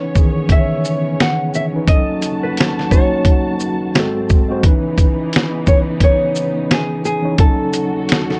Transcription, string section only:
0, 0, Header, 1, 2, 480
1, 0, Start_track
1, 0, Key_signature, 4, "minor"
1, 0, Tempo, 689655
1, 1305, Time_signature, 4, 2, 24, 8
1, 5845, End_track
2, 0, Start_track
2, 0, Title_t, "String section"
2, 0, Program_c, 0, 48
2, 0, Note_on_c, 0, 49, 75
2, 0, Note_on_c, 0, 59, 72
2, 0, Note_on_c, 0, 61, 67
2, 0, Note_on_c, 0, 73, 89
2, 1288, Note_off_c, 0, 73, 0
2, 1290, Note_off_c, 0, 59, 0
2, 1290, Note_off_c, 0, 61, 0
2, 1310, Note_on_c, 0, 66, 68
2, 1312, Note_on_c, 0, 81, 85
2, 1314, Note_on_c, 0, 39, 84
2, 2721, Note_off_c, 0, 49, 0
2, 2733, Note_off_c, 0, 66, 0
2, 2735, Note_off_c, 0, 39, 0
2, 2751, Note_on_c, 0, 44, 73
2, 2752, Note_on_c, 0, 60, 66
2, 2753, Note_on_c, 0, 54, 71
2, 3209, Note_off_c, 0, 81, 0
2, 3223, Note_off_c, 0, 44, 0
2, 3224, Note_off_c, 0, 54, 0
2, 3224, Note_off_c, 0, 60, 0
2, 3233, Note_on_c, 0, 63, 73
2, 3234, Note_on_c, 0, 49, 79
2, 3234, Note_on_c, 0, 52, 85
2, 3235, Note_on_c, 0, 59, 73
2, 5130, Note_off_c, 0, 52, 0
2, 5130, Note_off_c, 0, 59, 0
2, 5130, Note_off_c, 0, 63, 0
2, 5147, Note_on_c, 0, 69, 86
2, 5148, Note_on_c, 0, 66, 69
2, 5149, Note_on_c, 0, 39, 80
2, 5845, Note_off_c, 0, 39, 0
2, 5845, Note_off_c, 0, 49, 0
2, 5845, Note_off_c, 0, 66, 0
2, 5845, Note_off_c, 0, 69, 0
2, 5845, End_track
0, 0, End_of_file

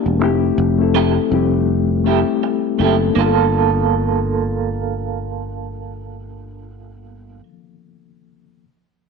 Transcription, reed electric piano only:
0, 0, Header, 1, 2, 480
1, 0, Start_track
1, 0, Tempo, 740741
1, 127, Time_signature, 4, 2, 24, 8
1, 5892, End_track
2, 0, Start_track
2, 0, Title_t, "Reed electric piano"
2, 0, Program_c, 0, 4
2, 0, Control_c, 0, 64, 127
2, 0, Note_on_c, 0, 58, 72
2, 0, Note_on_c, 0, 62, 69
2, 0, Note_on_c, 0, 64, 72
2, 0, Note_on_c, 0, 67, 90
2, 73, Note_off_c, 0, 58, 0
2, 77, Note_off_c, 0, 62, 0
2, 88, Note_off_c, 0, 67, 0
2, 104, Note_off_c, 0, 64, 0
2, 126, Note_on_c, 0, 57, 91
2, 133, Note_on_c, 0, 60, 84
2, 137, Control_c, 0, 64, 0
2, 142, Note_on_c, 0, 64, 90
2, 153, Note_on_c, 0, 67, 106
2, 253, Control_c, 0, 64, 127
2, 451, Note_off_c, 0, 57, 0
2, 454, Note_off_c, 0, 60, 0
2, 459, Note_off_c, 0, 64, 0
2, 465, Note_off_c, 0, 67, 0
2, 507, Note_on_c, 0, 57, 68
2, 519, Note_on_c, 0, 60, 70
2, 526, Note_on_c, 0, 64, 66
2, 538, Note_on_c, 0, 69, 78
2, 806, Note_off_c, 0, 57, 0
2, 812, Note_off_c, 0, 60, 0
2, 816, Note_off_c, 0, 64, 0
2, 821, Note_off_c, 0, 69, 0
2, 844, Note_on_c, 0, 55, 55
2, 851, Note_on_c, 0, 60, 69
2, 862, Note_on_c, 0, 64, 68
2, 872, Note_on_c, 0, 67, 75
2, 884, Note_on_c, 0, 57, 66
2, 895, Note_off_c, 0, 55, 0
2, 1276, Note_off_c, 0, 60, 0
2, 1282, Note_off_c, 0, 64, 0
2, 1286, Note_off_c, 0, 67, 0
2, 1292, Note_off_c, 0, 57, 0
2, 1323, Note_on_c, 0, 57, 66
2, 1332, Note_on_c, 0, 60, 63
2, 1342, Note_on_c, 0, 64, 64
2, 1352, Note_on_c, 0, 67, 75
2, 1752, Note_off_c, 0, 57, 0
2, 1757, Note_off_c, 0, 60, 0
2, 1761, Note_off_c, 0, 64, 0
2, 1767, Note_off_c, 0, 67, 0
2, 1801, Note_on_c, 0, 57, 61
2, 1811, Note_on_c, 0, 60, 53
2, 1822, Note_on_c, 0, 64, 53
2, 1830, Note_on_c, 0, 69, 64
2, 1994, Note_on_c, 0, 58, 57
2, 2018, Note_off_c, 0, 57, 0
2, 2022, Note_off_c, 0, 60, 0
2, 2028, Note_off_c, 0, 64, 0
2, 2032, Note_off_c, 0, 69, 0
2, 2033, Note_on_c, 0, 62, 58
2, 2056, Control_c, 0, 64, 0
2, 2073, Note_on_c, 0, 65, 56
2, 2115, Note_on_c, 0, 69, 69
2, 2164, Control_c, 0, 64, 127
2, 4740, Note_off_c, 0, 58, 0
2, 4778, Note_off_c, 0, 62, 0
2, 4819, Note_off_c, 0, 65, 0
2, 4860, Note_off_c, 0, 69, 0
2, 5596, Control_c, 0, 64, 0
2, 5892, End_track
0, 0, End_of_file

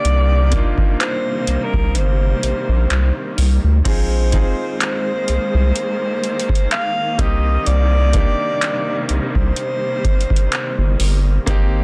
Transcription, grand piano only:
0, 0, Header, 1, 2, 480
1, 0, Start_track
1, 0, Key_signature, -3, "minor"
1, 0, Tempo, 952381
1, 22, Time_signature, 4, 2, 24, 8
1, 5967, End_track
2, 0, Start_track
2, 0, Title_t, "Grand piano"
2, 0, Program_c, 0, 0
2, 0, Control_c, 0, 64, 127
2, 0, Note_on_c, 0, 58, 80
2, 0, Note_on_c, 0, 62, 68
2, 0, Note_on_c, 0, 63, 73
2, 0, Note_on_c, 0, 67, 90
2, 229, Note_off_c, 0, 58, 0
2, 232, Note_off_c, 0, 62, 0
2, 235, Note_off_c, 0, 63, 0
2, 238, Note_off_c, 0, 67, 0
2, 258, Note_on_c, 0, 58, 76
2, 264, Note_on_c, 0, 62, 67
2, 269, Note_on_c, 0, 63, 70
2, 275, Note_on_c, 0, 65, 87
2, 1160, Note_off_c, 0, 58, 0
2, 1162, Note_off_c, 0, 62, 0
2, 1165, Note_off_c, 0, 63, 0
2, 1168, Note_off_c, 0, 65, 0
2, 1938, Note_on_c, 0, 60, 82
2, 1944, Note_on_c, 0, 63, 72
2, 1948, Control_c, 0, 64, 0
2, 1950, Note_on_c, 0, 65, 74
2, 1955, Note_on_c, 0, 68, 89
2, 2044, Control_c, 0, 64, 127
2, 2165, Note_off_c, 0, 60, 0
2, 2168, Note_off_c, 0, 63, 0
2, 2171, Note_off_c, 0, 65, 0
2, 2174, Note_off_c, 0, 68, 0
2, 2177, Note_on_c, 0, 60, 77
2, 2183, Note_on_c, 0, 63, 68
2, 2189, Note_on_c, 0, 65, 67
2, 2194, Note_on_c, 0, 68, 83
2, 3079, Note_off_c, 0, 60, 0
2, 3082, Note_off_c, 0, 63, 0
2, 3085, Note_off_c, 0, 65, 0
2, 3088, Note_off_c, 0, 68, 0
2, 3620, Note_on_c, 0, 58, 75
2, 3625, Note_on_c, 0, 60, 71
2, 3628, Control_c, 0, 64, 0
2, 3631, Note_on_c, 0, 63, 74
2, 3636, Note_on_c, 0, 67, 89
2, 3730, Control_c, 0, 64, 127
2, 4071, Note_off_c, 0, 58, 0
2, 4073, Note_off_c, 0, 60, 0
2, 4076, Note_off_c, 0, 63, 0
2, 4079, Note_off_c, 0, 67, 0
2, 4098, Note_on_c, 0, 58, 80
2, 4103, Note_on_c, 0, 62, 70
2, 4109, Note_on_c, 0, 63, 72
2, 4115, Note_on_c, 0, 67, 82
2, 5000, Note_off_c, 0, 58, 0
2, 5002, Note_off_c, 0, 62, 0
2, 5005, Note_off_c, 0, 63, 0
2, 5008, Note_off_c, 0, 67, 0
2, 5777, Note_on_c, 0, 58, 96
2, 5783, Note_on_c, 0, 60, 90
2, 5789, Note_on_c, 0, 63, 86
2, 5790, Control_c, 0, 64, 0
2, 5795, Note_on_c, 0, 67, 106
2, 5867, Control_c, 0, 64, 127
2, 5967, Note_off_c, 0, 58, 0
2, 5967, Note_off_c, 0, 60, 0
2, 5967, Note_off_c, 0, 63, 0
2, 5967, Note_off_c, 0, 67, 0
2, 5967, End_track
0, 0, End_of_file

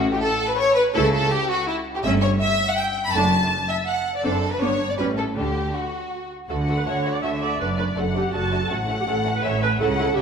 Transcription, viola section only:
0, 0, Header, 1, 2, 480
1, 0, Start_track
1, 0, Key_signature, 2, "major"
1, 0, Tempo, 366077
1, 1244, Time_signature, 3, 2, 24, 8
1, 6045, Tempo, 377121
1, 8925, Tempo, 367422
1, 13295, End_track
2, 0, Start_track
2, 0, Title_t, "Viola section"
2, 0, Program_c, 0, 48
2, 1250, Note_on_c, 0, 64, 64
2, 1252, Note_on_c, 0, 57, 63
2, 1471, Note_off_c, 0, 64, 0
2, 1472, Note_off_c, 0, 57, 0
2, 2687, Note_on_c, 0, 57, 62
2, 2691, Note_on_c, 0, 61, 66
2, 2908, Note_off_c, 0, 57, 0
2, 2910, Note_off_c, 0, 61, 0
2, 4123, Note_on_c, 0, 57, 55
2, 4125, Note_on_c, 0, 62, 58
2, 4344, Note_off_c, 0, 57, 0
2, 4346, Note_off_c, 0, 62, 0
2, 5555, Note_on_c, 0, 62, 50
2, 5556, Note_on_c, 0, 60, 51
2, 5782, Note_off_c, 0, 62, 0
2, 5783, Note_off_c, 0, 60, 0
2, 6034, Note_on_c, 0, 62, 51
2, 6037, Note_on_c, 0, 59, 55
2, 6260, Note_off_c, 0, 62, 0
2, 6261, Note_off_c, 0, 59, 0
2, 6517, Note_on_c, 0, 55, 48
2, 6519, Note_on_c, 0, 61, 45
2, 6743, Note_off_c, 0, 55, 0
2, 6744, Note_off_c, 0, 61, 0
2, 6991, Note_on_c, 0, 62, 41
2, 6997, Note_on_c, 0, 57, 41
2, 7224, Note_off_c, 0, 62, 0
2, 7227, Note_off_c, 0, 57, 0
2, 8444, Note_on_c, 0, 69, 55
2, 8546, Note_off_c, 0, 69, 0
2, 8805, Note_on_c, 0, 71, 52
2, 8853, Note_off_c, 0, 71, 0
2, 8918, Note_on_c, 0, 73, 66
2, 9275, Note_off_c, 0, 73, 0
2, 9289, Note_on_c, 0, 74, 52
2, 9399, Note_on_c, 0, 76, 62
2, 9408, Note_off_c, 0, 74, 0
2, 9496, Note_off_c, 0, 76, 0
2, 9646, Note_on_c, 0, 74, 63
2, 9881, Note_off_c, 0, 74, 0
2, 9885, Note_on_c, 0, 71, 67
2, 9981, Note_off_c, 0, 71, 0
2, 10119, Note_on_c, 0, 71, 62
2, 10217, Note_off_c, 0, 71, 0
2, 10364, Note_on_c, 0, 69, 62
2, 10460, Note_off_c, 0, 69, 0
2, 10602, Note_on_c, 0, 67, 59
2, 10839, Note_off_c, 0, 67, 0
2, 10839, Note_on_c, 0, 66, 63
2, 11196, Note_off_c, 0, 66, 0
2, 11215, Note_on_c, 0, 69, 65
2, 11321, Note_on_c, 0, 66, 69
2, 11331, Note_off_c, 0, 69, 0
2, 11425, Note_off_c, 0, 66, 0
2, 11700, Note_on_c, 0, 67, 51
2, 11746, Note_off_c, 0, 67, 0
2, 11802, Note_on_c, 0, 69, 74
2, 11907, Note_off_c, 0, 69, 0
2, 12171, Note_on_c, 0, 71, 64
2, 12287, Note_off_c, 0, 71, 0
2, 12294, Note_on_c, 0, 73, 83
2, 12526, Note_on_c, 0, 71, 77
2, 12529, Note_off_c, 0, 73, 0
2, 12622, Note_off_c, 0, 71, 0
2, 12764, Note_on_c, 0, 69, 86
2, 12860, Note_off_c, 0, 69, 0
2, 13013, Note_on_c, 0, 69, 76
2, 13243, Note_off_c, 0, 69, 0
2, 13246, Note_on_c, 0, 67, 83
2, 13295, Note_off_c, 0, 67, 0
2, 13295, End_track
0, 0, End_of_file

